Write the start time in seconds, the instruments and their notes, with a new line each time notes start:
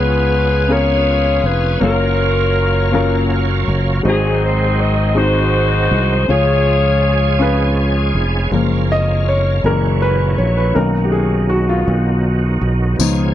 Already playing: fingered electric bass C#2, grand piano C#3 B3 C#4 F4 G#4 C#5, saxophone section B3 F4 G#4 B4, tonewheel organ B3 C#4 F4 G#4
0.68 grand piano B3 C#4 F4 G#4 A#4, saxophone section F4 G#4 C#5
1.44 fingered electric bass F1, saxophone section B4
1.80 fingered electric bass F#1, tonewheel organ F#3 A#3, grand piano F#3 A#3 C#4 F4 C#5, saxophone section C#4 F4 A#4
2.92 grand piano F#3 A#3 C#4 F4 A#4
3.68 fingered electric bass F#1
4.03 fingered electric bass G#1, grand piano G#2 G#3 C4 D#4 F#4 C5, tonewheel organ D#3 G#3 C4, saxophone section C4 D#4
4.08 saxophone section G#4
4.45 saxophone section C5
4.81 saxophone section D#5
5.15 grand piano G#3 C4 D#4 F#4 C5, saxophone section D#4 F#4 C5
5.91 fingered electric bass C2
6.28 fingered electric bass C#2, grand piano C#3 C#4 F4 G#4, tonewheel organ F3 G#3 C#4 G#4, saxophone section F4 G#4 C#5
7.39 grand piano C#4 F4 B4
8.15 fingered electric bass F1
8.51 fingered electric bass F#1, grand piano F3 G#3 A#3, tonewheel organ A#3 C#4 F4
8.92 grand piano D#5
9.29 grand piano C#5
9.64 fingered electric bass F#1, grand piano A#2 E3 G#3 A#4, tonewheel organ E3 F#3
10.02 grand piano B4
10.38 fingered electric bass A#1, grand piano C#5
10.57 grand piano B4
10.74 fingered electric bass B1, tonewheel organ B2 D#3, grand piano D#3 A#3 C#4 A#4
11.05 grand piano G4
11.12 grand piano G#4
11.49 grand piano F#4
11.69 grand piano F4
11.88 fingered electric bass B1
12.61 fingered electric bass B1
12.99 fingered electric bass C#2, grand piano F3 B3 D#4, tonewheel organ F3 C#4 G#4, tambourine